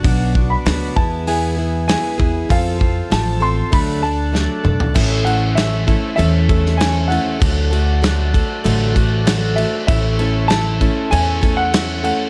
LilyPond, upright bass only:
\new Staff \with { instrumentName = "Upright bass" } { \clef bass \time 4/4 \key a \major \tempo 4 = 98 b,,4 d,8 e,2 e,8 | f,4 a,,4 d,4. b,,8 | a,,2 e,2 | d,2 a,,2 |
a,,2 e,2 | }